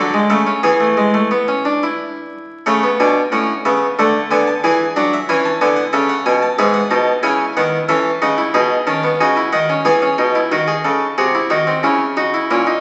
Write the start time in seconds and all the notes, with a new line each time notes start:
Already playing: D3 F#3 A4 D5
0.14 G#3
0.30 C#3 A3 E5
0.47 C#4
0.63 E3 B3 G#4 G#5
0.80 A3
0.97 G#3
1.14 A3
1.31 B3
1.48 C#4
1.65 D4
1.83 E4
2.66 C#3 A3 C#5 E5
2.83 B3
3.00 B2 D4 G#5
3.32 A2 C#4 F#5
3.65 C#3 B3 E5
3.99 D3 A3 A4 F#5
4.31 D3 B3 G#5
4.47 A5
4.64 E3 E4 G#4 G#5
4.96 F#3 D4 F#5
5.13 E5
5.29 E3 C#4 E4 G#5
5.45 A5
5.61 D3 B3 G#5
5.76 F#5
5.93 C#3 C#4 A4 E5
6.09 F#5
6.26 B2 G#5
6.42 A5
6.59 G#2 B3 G#4 E5
6.74 F#5
6.91 B2 D#4 A5
7.23 C#3 C#4 E4 G#5
7.57 D#3 B3 F#5
7.89 E3 C#4 A4 E5
8.22 C#3 D#4 F#5
8.38 E4
8.54 B2 D#4 G#4 B5
8.87 D#3 C#4 A5
9.04 B3
9.20 C#3 D#4 F#4 G#5
9.37 E4
9.52 D#3 D#4 F#5
9.70 C#4
9.85 E3 B3 G#4 G#5
10.02 C#4
10.18 B2 D#4
10.35 E4
10.52 D#3 D#4 F#4
10.68 G#4
10.84 C#3 A4
11.18 C3 F#4 G#4
11.35 E4
11.50 D#3 D#4 F#4
11.67 C4
11.83 C#3 C#4 E4
12.17 D#4 F#4
12.34 E4
12.51 A#2 C#4 E4
12.67 D#4